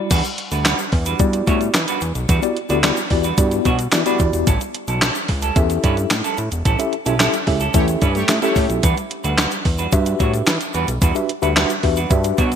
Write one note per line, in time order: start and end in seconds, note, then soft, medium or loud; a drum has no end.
0.00 0.11 G3 medium
0.00 0.11 E4 medium
0.00 0.11 F#4 medium
0.00 0.11 D5 medium
0.10 0.22 E2 loud
0.10 0.28 G3 medium
0.10 0.24 D4 medium
0.10 0.23 F#4 medium
0.10 0.23 B4 medium
0.10 kick loud
0.10 closed hi-hat loud
0.10 crash loud
0.10 shaker medium
0.24 muted clean electric guitar stroke medium
0.24 closed hi-hat medium
0.24 shaker medium
0.38 muted clean electric guitar stroke soft
0.38 closed hi-hat medium
0.51 0.74 D2 medium
0.51 0.64 G3 soft
0.51 0.64 D4 medium
0.51 0.65 F#4 medium
0.51 0.65 B4 medium
0.51 closed hi-hat medium
0.51 shaker medium
0.65 0.83 G3 medium
0.65 0.78 D4 medium
0.65 0.78 F#4 medium
0.65 0.78 B4 medium
0.65 snare loud
0.65 clap loud
0.65 closed hi-hat medium
0.65 shaker medium
0.79 muted clean electric guitar stroke soft
0.79 closed hi-hat medium
0.79 shaker medium
0.92 1.15 E2 loud
0.92 muted clean electric guitar stroke medium
0.92 kick medium
0.92 open hi-hat medium
1.06 1.20 G3 medium
1.06 1.20 D4 medium
1.06 1.20 F#4 medium
1.06 1.20 B4 medium
1.06 closed hi-hat medium
1.06 shaker medium
1.19 1.42 G2 loud
1.19 1.78 B3 loud
1.19 1.78 E4 medium
1.19 1.78 F#4 medium
1.19 1.79 G4 medium
1.19 1.79 D5 loud
1.19 kick loud
1.19 closed hi-hat loud
1.19 shaker medium
1.33 muted clean electric guitar stroke soft
1.33 closed hi-hat medium
1.33 shaker soft
1.47 1.70 A2 loud
1.47 1.64 G3 medium
1.47 1.60 D4 loud
1.47 1.60 F#4 medium
1.47 1.60 C#5 loud
1.47 kick loud
1.47 closed hi-hat medium
1.47 shaker medium
1.61 muted clean electric guitar stroke medium
1.61 closed hi-hat medium
1.61 shaker soft
1.74 1.86 E3 loud
1.74 muted clean electric guitar stroke soft
1.74 snare loud
1.74 clap medium
1.74 closed hi-hat medium
1.74 shaker medium
1.88 2.00 G3 medium
1.88 2.01 D4 medium
1.88 2.01 F#4 medium
1.88 2.01 B4 medium
1.88 closed hi-hat medium
1.88 shaker medium
2.01 2.13 E2 loud
2.01 muted clean electric guitar stroke soft
2.01 closed hi-hat medium
2.01 shaker medium
2.15 2.26 B1 medium
2.15 muted clean electric guitar stroke medium
2.15 closed hi-hat medium
2.15 shaker medium
2.29 2.40 E2 loud
2.29 2.46 G3 medium
2.29 2.42 D4 medium
2.29 2.42 F#4 medium
2.29 2.41 B4 medium
2.29 kick loud
2.29 closed hi-hat loud
2.29 shaker medium
2.42 2.57 B3 medium
2.42 2.57 E4 medium
2.42 2.57 F#4 medium
2.42 2.57 G4 medium
2.42 2.57 D5 loud
2.42 muted clean electric guitar stroke soft
2.42 closed hi-hat medium
2.42 shaker medium
2.56 muted clean electric guitar stroke soft
2.56 closed hi-hat medium
2.69 2.92 D2 loud
2.69 2.82 G3 medium
2.69 2.77 B3 loud
2.69 2.83 D4 medium
2.69 2.77 E4 medium
2.69 2.77 F#4 medium
2.69 2.83 F#4 medium
2.69 2.77 G4 medium
2.69 2.83 B4 medium
2.69 2.77 D5 loud
2.69 closed hi-hat medium
2.69 shaker medium
2.83 3.01 G3 medium
2.83 2.98 B3 loud
2.83 2.96 D4 medium
2.83 2.98 E4 medium
2.83 2.98 F#4 medium
2.83 2.96 F#4 loud
2.83 2.98 G4 medium
2.83 2.96 B4 loud
2.83 2.98 D5 loud
2.83 snare loud
2.83 clap medium
2.83 closed hi-hat medium
2.83 shaker medium
2.97 muted clean electric guitar stroke soft
2.97 closed hi-hat medium
2.97 shaker medium
3.10 3.33 E2 medium
3.10 3.25 B3 medium
3.10 3.25 E4 medium
3.10 3.25 F#4 medium
3.10 3.26 G4 medium
3.10 3.26 D5 medium
3.10 muted clean electric guitar stroke soft
3.10 kick medium
3.10 open hi-hat medium
3.24 3.39 G3 medium
3.24 3.38 D4 medium
3.24 3.38 F#4 medium
3.24 3.38 B4 medium
3.24 closed hi-hat medium
3.24 shaker medium
3.38 3.60 G2 loud
3.38 3.67 B3 medium
3.38 3.67 E4 medium
3.38 3.67 F#4 medium
3.38 3.67 G4 medium
3.38 3.68 D5 loud
3.38 kick loud
3.38 closed hi-hat loud
3.38 shaker medium
3.51 muted clean electric guitar stroke medium
3.51 closed hi-hat medium
3.51 shaker medium
3.65 3.88 B2 loud
3.65 3.83 G3 medium
3.65 3.78 D4 medium
3.65 3.78 F#4 medium
3.65 3.79 C#5 loud
3.65 kick medium
3.65 closed hi-hat medium
3.65 shaker medium
3.79 muted clean electric guitar stroke soft
3.79 closed hi-hat medium
3.79 shaker medium
3.92 4.04 E3 medium
3.92 4.00 B3 loud
3.92 4.00 E4 medium
3.92 4.00 F#4 medium
3.92 4.00 G4 medium
3.92 4.00 D5 loud
3.92 muted clean electric guitar stroke soft
3.92 snare loud
3.92 clap medium
3.92 closed hi-hat medium
3.92 shaker medium
4.06 4.18 G3 medium
4.06 4.47 B3 loud
4.06 4.19 D4 medium
4.06 4.47 E4 loud
4.06 4.47 F#4 loud
4.06 4.19 F#4 medium
4.06 4.47 G4 loud
4.06 4.19 B4 loud
4.06 4.47 D5 loud
4.06 closed hi-hat medium
4.06 shaker medium
4.19 4.31 E2 medium
4.19 muted clean electric guitar stroke soft
4.19 kick medium
4.19 closed hi-hat medium
4.19 shaker medium
4.33 4.45 E1 medium
4.33 muted clean electric guitar stroke soft
4.33 closed hi-hat medium
4.33 shaker medium
4.47 4.58 A1 loud
4.47 4.65 G3 medium
4.47 4.60 C#4 medium
4.47 4.60 E4 medium
4.47 4.59 A4 medium
4.47 kick loud
4.47 closed hi-hat loud
4.47 shaker medium
4.61 muted clean electric guitar stroke soft
4.61 closed hi-hat medium
4.61 shaker medium
4.74 muted clean electric guitar stroke soft
4.74 closed hi-hat medium
4.88 5.10 B1 loud
4.88 5.00 G3 soft
4.88 5.01 C#4 medium
4.88 5.01 E4 medium
4.88 5.01 A4 medium
4.88 closed hi-hat medium
4.88 shaker medium
5.01 5.19 G3 medium
5.01 5.15 C#4 medium
5.01 5.14 E4 medium
5.01 5.14 A4 medium
5.01 snare loud
5.01 clap medium
5.01 closed hi-hat medium
5.01 shaker medium
5.15 muted clean electric guitar stroke medium
5.15 closed hi-hat medium
5.15 shaker medium
5.28 5.51 C#2 medium
5.28 muted clean electric guitar stroke soft
5.28 kick medium
5.28 open hi-hat medium
5.42 5.57 G3 medium
5.42 5.57 C#4 medium
5.42 5.56 E4 medium
5.42 5.56 A4 medium
5.42 closed hi-hat medium
5.42 shaker medium
5.56 5.79 E2 loud
5.56 6.15 C#4 loud
5.56 6.15 E4 medium
5.56 6.15 G4 medium
5.56 6.15 A4 medium
5.56 6.15 E5 loud
5.56 kick loud
5.56 closed hi-hat loud
5.56 shaker medium
5.70 muted clean electric guitar stroke medium
5.70 closed hi-hat medium
5.70 shaker medium
5.83 6.06 G2 loud
5.83 6.01 G3 medium
5.83 5.97 C#4 medium
5.83 5.96 E4 medium
5.83 5.97 B4 medium
5.83 kick medium
5.83 closed hi-hat medium
5.83 shaker medium
5.97 muted clean electric guitar stroke soft
5.97 closed hi-hat medium
5.97 shaker soft
6.10 6.22 A2 medium
6.10 muted clean electric guitar stroke medium
6.10 snare loud
6.10 clap medium
6.10 closed hi-hat medium
6.10 shaker medium
6.24 6.37 G3 medium
6.24 6.37 C#4 medium
6.24 6.37 E4 medium
6.24 6.37 A4 medium
6.24 closed hi-hat medium
6.24 shaker medium
6.37 6.49 A2 medium
6.37 muted clean electric guitar stroke soft
6.37 closed hi-hat medium
6.37 shaker medium
6.51 6.63 E1 medium
6.51 muted clean electric guitar stroke soft
6.51 closed hi-hat medium
6.51 shaker medium
6.65 6.77 A1 loud
6.65 6.83 G3 medium
6.65 6.78 C#4 medium
6.65 6.78 E4 medium
6.65 6.77 A4 medium
6.65 kick loud
6.65 closed hi-hat loud
6.65 shaker medium
6.79 6.93 C#4 medium
6.79 6.94 E4 medium
6.79 6.94 G4 medium
6.79 6.94 A4 medium
6.79 6.94 E5 loud
6.79 muted clean electric guitar stroke soft
6.79 closed hi-hat medium
6.79 shaker medium
6.92 muted clean electric guitar stroke soft
6.92 closed hi-hat medium
7.06 7.29 B1 medium
7.06 7.18 G3 medium
7.06 7.13 C#4 medium
7.06 7.19 C#4 medium
7.06 7.19 E4 medium
7.06 7.14 E4 medium
7.06 7.14 G4 medium
7.06 7.19 A4 medium
7.06 7.14 A4 medium
7.06 7.14 E5 loud
7.06 closed hi-hat medium
7.06 shaker medium
7.19 7.37 G3 medium
7.19 7.34 C#4 medium
7.19 7.33 C#4 medium
7.19 7.35 E4 medium
7.19 7.33 E4 medium
7.19 7.35 G4 medium
7.19 7.35 A4 medium
7.19 7.32 A4 medium
7.19 7.35 E5 loud
7.19 snare loud
7.19 clap medium
7.19 closed hi-hat medium
7.19 shaker medium
7.33 muted clean electric guitar stroke medium
7.33 closed hi-hat medium
7.33 shaker medium
7.47 7.70 C#2 medium
7.47 7.62 C#4 medium
7.47 7.62 E4 medium
7.47 7.62 G4 medium
7.47 7.62 A4 medium
7.47 7.62 E5 loud
7.47 muted clean electric guitar stroke soft
7.47 kick medium
7.47 open hi-hat medium
7.60 7.75 G3 medium
7.60 7.75 C#4 medium
7.60 7.75 E4 medium
7.60 7.74 A4 medium
7.60 closed hi-hat medium
7.60 shaker medium
7.74 7.97 E2 loud
7.74 7.86 A3 medium
7.74 8.04 C#4 medium
7.74 8.04 E4 medium
7.74 7.86 G4 medium
7.74 8.04 G4 medium
7.74 8.04 A4 medium
7.74 7.86 C#5 medium
7.74 8.04 E5 medium
7.74 kick loud
7.74 closed hi-hat medium
7.74 shaker medium
7.88 muted clean electric guitar stroke medium
7.88 closed hi-hat medium
7.88 shaker medium
8.01 8.24 G2 loud
8.01 8.19 G3 medium
8.01 8.15 C#4 medium
8.01 8.14 E4 medium
8.01 8.15 B4 loud
8.01 kick medium
8.01 closed hi-hat medium
8.01 shaker medium
8.15 8.27 A3 medium
8.15 8.27 G4 medium
8.15 8.27 C#5 medium
8.15 muted clean electric guitar stroke medium
8.15 closed hi-hat medium
8.15 shaker medium
8.28 8.40 A2 loud
8.28 8.36 C#4 medium
8.28 8.36 E4 medium
8.28 8.36 G4 medium
8.28 8.36 A4 medium
8.28 8.36 E5 loud
8.28 muted clean electric guitar stroke soft
8.28 snare loud
8.28 clap loud
8.28 closed hi-hat loud
8.28 shaker medium
8.42 8.55 G3 medium
8.42 8.66 A3 loud
8.42 8.83 C#4 loud
8.42 8.55 C#4 medium
8.42 8.83 E4 loud
8.42 8.55 E4 medium
8.42 8.66 G4 medium
8.42 8.84 G4 medium
8.42 8.55 A4 medium
8.42 8.84 A4 medium
8.42 8.66 C#5 loud
8.42 8.84 E5 loud
8.42 closed hi-hat medium
8.42 shaker medium
8.56 8.67 A2 loud
8.56 muted clean electric guitar stroke soft
8.56 kick loud
8.56 open hi-hat medium
8.56 shaker medium
8.70 8.81 B1 medium
8.70 muted clean electric guitar stroke soft
8.70 closed hi-hat medium
8.70 shaker medium
8.83 8.95 E2 loud
8.83 9.01 G3 medium
8.83 8.96 D4 medium
8.83 8.96 F#4 medium
8.83 8.96 B4 medium
8.83 kick loud
8.83 closed hi-hat loud
8.83 shaker medium
8.97 muted clean electric guitar stroke medium
8.97 closed hi-hat medium
8.97 shaker medium
9.10 muted clean electric guitar stroke soft
9.10 closed hi-hat medium
9.24 9.47 D2 loud
9.24 9.36 G3 medium
9.24 9.37 D4 medium
9.24 9.37 F#4 medium
9.24 9.37 B4 medium
9.24 closed hi-hat medium
9.24 shaker medium
9.37 9.55 G3 medium
9.37 9.51 D4 medium
9.37 9.50 F#4 medium
9.37 9.50 B4 medium
9.37 snare loud
9.37 clap medium
9.37 closed hi-hat medium
9.37 shaker medium
9.51 muted clean electric guitar stroke medium
9.51 closed hi-hat medium
9.51 shaker medium
9.65 9.88 E2 medium
9.65 muted clean electric guitar stroke soft
9.65 kick medium
9.65 open hi-hat medium
9.78 9.93 G3 medium
9.78 9.93 D4 medium
9.78 9.93 F#4 medium
9.78 9.92 B4 medium
9.78 closed hi-hat medium
9.78 shaker medium
9.92 10.15 G2 loud
9.92 10.51 D4 medium
9.92 10.51 F#4 medium
9.92 10.51 G4 medium
9.92 10.51 B4 medium
9.92 10.51 E5 loud
9.92 kick loud
9.92 closed hi-hat loud
9.92 shaker medium
10.06 muted clean electric guitar stroke medium
10.06 closed hi-hat medium
10.06 shaker medium
10.19 10.42 A2 loud
10.19 10.37 G3 medium
10.19 10.33 D4 medium
10.19 10.33 F#4 medium
10.19 10.33 C#5 medium
10.19 kick loud
10.19 closed hi-hat medium
10.19 shaker medium
10.33 muted clean electric guitar stroke medium
10.33 closed hi-hat soft
10.33 shaker medium
10.47 10.58 E3 loud
10.47 snare loud
10.47 clap medium
10.47 closed hi-hat medium
10.47 shaker medium
10.61 muted clean electric guitar stroke soft
10.61 closed hi-hat medium
10.61 shaker medium
10.74 10.86 E2 loud
10.74 10.92 G3 medium
10.74 10.87 D4 medium
10.74 10.87 F#4 medium
10.74 10.87 B4 medium
10.74 closed hi-hat medium
10.74 shaker medium
10.88 10.99 B1 medium
10.88 muted clean electric guitar stroke soft
10.88 closed hi-hat medium
10.88 shaker medium
11.02 11.13 E2 loud
11.02 11.19 G3 medium
11.02 11.15 D4 medium
11.02 11.14 F#4 medium
11.02 11.14 B4 medium
11.02 kick loud
11.02 closed hi-hat loud
11.02 shaker medium
11.15 11.30 D4 medium
11.15 11.30 F#4 medium
11.15 11.30 G4 medium
11.15 11.30 B4 medium
11.15 11.30 E5 medium
11.15 muted clean electric guitar stroke soft
11.15 closed hi-hat medium
11.15 shaker medium
11.29 muted clean electric guitar stroke soft
11.29 closed hi-hat medium
11.42 11.65 D2 loud
11.42 11.55 G3 medium
11.42 11.50 D4 loud
11.42 11.55 D4 medium
11.42 11.50 F#4 medium
11.42 11.55 F#4 medium
11.42 11.50 G4 medium
11.42 11.56 B4 medium
11.42 11.50 B4 medium
11.42 11.50 E5 loud
11.42 closed hi-hat medium
11.42 shaker medium
11.56 11.74 G3 medium
11.56 11.71 D4 medium
11.56 11.69 D4 medium
11.56 11.71 F#4 medium
11.56 11.69 F#4 medium
11.56 11.71 G4 medium
11.56 11.71 B4 medium
11.56 11.69 B4 medium
11.56 11.71 E5 loud
11.56 snare loud
11.56 clap loud
11.56 closed hi-hat medium
11.56 shaker medium
11.70 muted clean electric guitar stroke soft
11.70 closed hi-hat medium
11.70 shaker medium
11.83 12.06 E2 medium
11.83 11.98 D4 medium
11.83 11.98 F#4 medium
11.83 11.98 G4 medium
11.83 11.98 B4 medium
11.83 11.98 E5 medium
11.83 muted clean electric guitar stroke soft
11.83 kick medium
11.83 open hi-hat medium
11.96 12.11 G3 medium
11.96 12.11 D4 medium
11.96 12.11 F#4 medium
11.96 12.11 B4 medium
11.96 closed hi-hat medium
11.96 shaker medium
12.10 12.33 G2 loud
12.10 12.40 D4 loud
12.10 12.40 F#4 medium
12.10 12.40 G4 medium
12.10 12.40 B4 medium
12.10 12.38 E5 loud
12.10 kick loud
12.10 closed hi-hat loud
12.10 shaker medium
12.24 muted clean electric guitar stroke soft
12.24 closed hi-hat medium
12.24 shaker medium
12.38 12.56 B2 loud
12.38 12.55 G3 medium
12.38 12.51 D4 medium
12.38 12.51 F#4 medium
12.38 12.51 C#5 loud
12.38 kick medium
12.38 closed hi-hat medium
12.38 shaker medium
12.51 muted clean electric guitar stroke medium
12.51 closed hi-hat medium
12.51 shaker soft